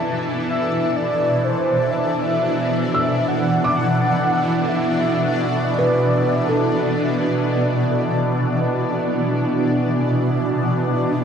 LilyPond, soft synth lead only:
\new Staff \with { instrumentName = "Soft synth lead" } { \time 4/4 \key b \phrygian \tempo 4 = 64 r8 e''8 d''8 c''8 e''4. fis''8 | fis''4 e''4 d''4. r8 | r1 | }